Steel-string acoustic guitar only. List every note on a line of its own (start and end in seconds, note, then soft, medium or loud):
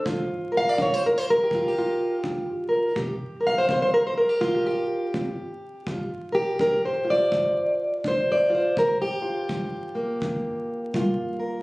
0.06 0.73 G2 medium
0.06 1.52 F4 soft
0.52 0.94 A#4 soft
0.57 0.69 F5 loud
0.69 0.79 D5 medium
0.78 1.46 D4 medium
0.78 0.95 C#5 medium
0.94 1.03 C5 medium
1.06 1.18 A#4 medium
1.18 1.24 C5 medium
1.30 2.16 A#4 medium
1.43 1.67 G4 medium
1.51 2.18 G2 medium
1.51 1.77 F4 medium
1.68 2.49 G4 medium
1.78 2.96 F4 medium
2.24 2.91 D4 medium
2.69 2.99 A#4 soft
2.96 3.63 C3 medium
2.96 4.29 G4 soft
3.41 3.58 A#4 soft
3.47 4.29 F5 medium
3.58 3.69 C5 medium
3.69 4.36 C4 medium
3.69 3.81 C5 medium
3.82 3.93 C5 medium
3.94 4.06 A#4 medium
4.07 4.14 C5 medium
4.18 5.05 A#4 medium
4.29 4.54 G4 medium
4.41 5.09 G2 medium
4.41 5.29 F4 medium
4.55 4.65 G4 medium
4.67 5.87 G4 medium
5.14 5.81 C4 medium
5.87 6.54 G2 medium
5.87 7.04 F4 soft
6.32 7.08 G4 medium
6.32 6.60 A#4 soft
6.60 7.27 D4 medium
6.60 6.84 A#4 medium
6.85 7.81 C5 medium
7.05 8.49 F4 soft
7.10 8.30 D5 medium
7.31 7.99 G2 medium
8.04 8.71 D4 medium
8.04 8.54 C5 medium
8.32 8.78 D5 medium
8.50 8.74 F4 soft
8.55 9.22 C5 medium
8.78 9.44 G2 medium
8.78 9.01 A#4 medium
9.02 11.19 G4 medium
9.22 10.95 F4 soft
9.50 10.17 G3 medium
9.95 11.63 A#3 soft
10.22 10.89 D3 medium
10.95 11.62 G3 medium
10.95 11.63 F4 soft
11.39 11.63 A#4 soft